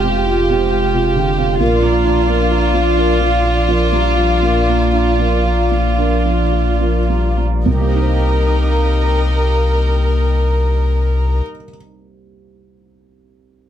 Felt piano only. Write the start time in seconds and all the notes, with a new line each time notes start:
Already playing: F2 C3 G#3 F4 G4
0.04 C3
0.27 F4
0.50 C3
0.72 G4
0.94 C3
1.15 D3
1.38 C3
1.60 A#2
1.82 F3
2.05 D4
2.28 F3
2.51 F4
2.74 F3
2.97 D4
3.20 F3
3.44 F4
3.68 F3
3.92 G3
4.17 F3
4.42 A#2
4.68 A#3
4.93 D4
5.20 F3
5.45 F4
5.71 F3
5.99 D4
6.26 F3
6.53 F4
6.81 F3
7.10 G3
7.37 F3
7.66 C2
7.73 C3
7.80 A#3
7.87 C4
7.94 D#4
8.01 C5